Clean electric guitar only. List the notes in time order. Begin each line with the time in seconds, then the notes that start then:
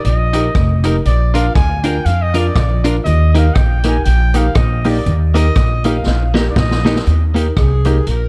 0.33 D#4 G4 A#4
0.84 D#4 G4 A#4
1.34 D4 F4 A#4
1.84 D4 F4 A#4
2.34 D4 F4 A#4
2.84 D4 F4 A#4
3.35 A#3 D#4 G4
3.84 A#3 D#4 G4
4.34 A#3 D#4 G4
4.85 A#3 D#4 G4
5.34 A#3 D#4 G4
5.85 A#3 D#4 G4
6.34 A#3 D#4 G4
6.85 A#3 D#4 G4
7.34 A#3 D#4 G4
7.85 A#3 D#4 G4